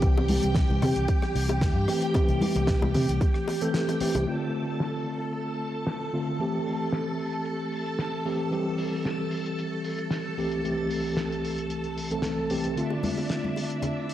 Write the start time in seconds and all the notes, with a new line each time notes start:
Already playing: G4 G5
0.02 C2 E3 G3 C4 G4, kick, closed hi-hat
0.18 high bongo
0.29 open hi-hat, high conga
0.43 C2, closed hi-hat
0.55 kick, snare, closed hi-hat, high bongo
0.70 C2, high conga
0.82 C3, cross-stick, open hi-hat, high bongo, low conga
0.96 C2, closed hi-hat
1.08 kick, closed hi-hat
1.22 cross-stick, high bongo
1.35 C2, open hi-hat
1.49 closed hi-hat, high bongo
1.61 kick, snare, closed hi-hat
1.76 G2
1.88 E3 A3 C4 G4, cross-stick, open hi-hat, high bongo
2.02 closed hi-hat
2.14 E3 A3 C4 G4, muted fingered electric bass stroke, kick, closed hi-hat, high bongo
2.28 C2, closed hi-hat
2.41 open hi-hat, high conga
2.55 C2, closed hi-hat, high bongo
2.67 kick, snare, closed hi-hat
2.82 C2, high bongo, high conga
2.94 C3, open hi-hat, low conga
3.09 C2, closed hi-hat
3.21 kick, closed hi-hat, high bongo
3.34 cross-stick
3.48 open hi-hat, high bongo
3.61 E3 A3 C4 A4, closed hi-hat
3.74 snare, closed hi-hat
3.89 closed hi-hat, high bongo
4.00 E3 A3 C4 G4, muted fingered electric bass stroke, cross-stick, open hi-hat
4.15 C2, closed hi-hat, high bongo
4.26 D3 A3 C4 F4 A4 A5, closed hi-hat, crash
4.54 open hi-hat
4.80 snare, closed hi-hat
5.07 open hi-hat
5.21 closed hi-hat
5.33 closed hi-hat
5.60 open hi-hat
5.74 closed hi-hat
5.87 snare, closed hi-hat
6.13 D3 A3 C4 F4, open hi-hat
6.27 closed hi-hat
6.39 E3 A3 C4 G4, closed hi-hat
6.66 open hi-hat
6.92 snare, closed hi-hat
7.19 open hi-hat
7.33 closed hi-hat
7.45 closed hi-hat
7.72 open hi-hat
7.86 closed hi-hat
7.99 snare, closed hi-hat
8.25 E3 A3 C4 G4, open hi-hat
8.40 closed hi-hat
8.51 E3 G3 C4 G4, closed hi-hat
8.78 open hi-hat
9.05 snare, closed hi-hat
9.31 open hi-hat
9.46 closed hi-hat
9.59 closed hi-hat
9.85 open hi-hat
9.99 closed hi-hat
10.11 snare, closed hi-hat
10.37 C2 E3 A3 C4 G4, open hi-hat
10.52 closed hi-hat
10.64 C2 E3 A3 C4 G4, closed hi-hat
10.91 open hi-hat
11.17 snare, closed hi-hat
11.32 closed hi-hat
11.45 open hi-hat
11.58 closed hi-hat
11.70 closed hi-hat
11.84 closed hi-hat
11.98 open hi-hat
12.11 C2 E3 A3 C4 A4, closed hi-hat
12.22 snare, closed hi-hat
12.50 C2 E3 A3 C4 G4, open hi-hat
12.64 closed hi-hat
12.76 D3 A3 C4 D4 F4 E5, closed hi-hat
12.91 high bongo
13.03 open hi-hat, high conga, low conga
13.17 high bongo
13.29 snare, closed hi-hat
13.44 high conga
13.56 open hi-hat, high bongo
13.70 closed hi-hat
13.82 closed hi-hat, high bongo, low conga
14.09 open hi-hat